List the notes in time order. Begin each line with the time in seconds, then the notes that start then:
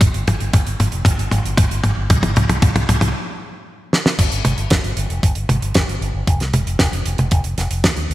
0.01 G1, kick, closed hi-hat, mid tom
0.14 G1, closed hi-hat
0.28 G1, closed hi-hat, mid tom
0.40 G1, closed hi-hat
0.53 G1, kick, closed hi-hat, mid tom
0.67 G1, closed hi-hat
0.80 G1, closed hi-hat, mid tom
0.92 F1, closed hi-hat
1.05 G1, kick, closed hi-hat, mid tom
1.19 G1, closed hi-hat
1.31 G1, closed hi-hat, mid tom
1.45 G1, closed hi-hat
1.57 G1, kick, closed hi-hat, mid tom
1.71 G1, closed hi-hat
1.84 G1, closed hi-hat, mid tom
1.97 G1
2.10 C2, kick, closed hi-hat, mid tom
2.23 G1, closed hi-hat, mid tom
2.36 C2, closed hi-hat, mid tom
2.49 C2, closed hi-hat, mid tom
2.62 C2, kick, closed hi-hat, mid tom
2.75 C2, closed hi-hat, mid tom
2.89 C2, closed hi-hat, mid tom
3.01 C2, closed hi-hat, mid tom
3.93 snare
4.06 snare
4.19 G1, kick, closed hi-hat, crash
4.32 G1, closed hi-hat
4.45 G1, closed hi-hat, high tom
4.58 G1, closed hi-hat
4.70 G1, kick, snare, closed hi-hat
4.84 G1, closed hi-hat
4.97 G1, closed hi-hat
5.10 F1, closed hi-hat
5.23 G1, kick, closed hi-hat
5.35 G1, closed hi-hat
5.49 G1, closed hi-hat, high tom
5.62 G1, closed hi-hat
5.74 G1, kick, snare, closed hi-hat
5.88 G1, closed hi-hat
6.01 G1, closed hi-hat
6.14 G1
6.27 F1, kick, closed hi-hat
6.40 C2, snare, closed hi-hat
6.53 F1, closed hi-hat, high tom
6.67 F1, closed hi-hat
6.79 F1, kick, snare, closed hi-hat
6.93 F1, closed hi-hat
7.06 F1, closed hi-hat
7.18 F1, closed hi-hat, high tom
7.31 F1, kick, closed hi-hat
7.44 F1, closed hi-hat
7.58 F1, snare, closed hi-hat
7.71 F1, closed hi-hat
7.84 D#2, kick, snare, closed hi-hat
7.97 D#2, closed hi-hat
8.10 D#2, closed hi-hat